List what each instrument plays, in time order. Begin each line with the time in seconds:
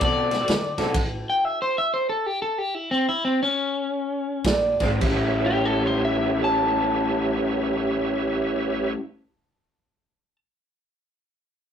0.01 upright bass B2, overdriven electric guitar D3 C4 F#4 A4, kick, ride
0.05 clean electric guitar D5
0.31 tonewheel organ C5 E5, muted overdriven electric guitar stroke, snare, ride
0.40 tonewheel organ F#4 A4 C5 E5
0.48 upright bass D3, muted overdriven electric guitar stroke, snare, ride
0.78 upright bass B1, overdriven electric guitar D3 C4 F#4 A4, tonewheel organ F#4 A4 C5 E5, snare, ride
0.94 upright bass A1, muted overdriven electric guitar stroke, kick, crash, ride
1.30 clean electric guitar G5
1.45 clean electric guitar E5
1.62 clean electric guitar C5
1.78 clean electric guitar E5
1.94 clean electric guitar C5
2.09 clean electric guitar A4
2.26 clean electric guitar G4
2.42 clean electric guitar A4
2.58 clean electric guitar G4
2.75 clean electric guitar E4
2.91 clean electric guitar C4
3.09 clean electric guitar E4
3.25 clean electric guitar C4
3.43 clean electric guitar C#4
4.44 upright bass A#1, electric slide guitar D5, muted overdriven electric guitar stroke, kick, snare, ride
4.80 upright bass G#1, overdriven electric guitar A#2 G#3 C4 D4, tonewheel organ G#4 C5 D5 F5, kick, snare, ride
5.01 upright bass A1, overdriven electric guitar A2 G3 C#4, tonewheel organ G4 B4 C#5 E5, electric slide guitar E5, kick, crash
5.05 overdriven electric guitar E4
5.46 clean electric guitar G4
5.65 clean electric guitar A4
5.86 clean electric guitar C5
6.05 clean electric guitar E5
6.44 clean electric guitar A5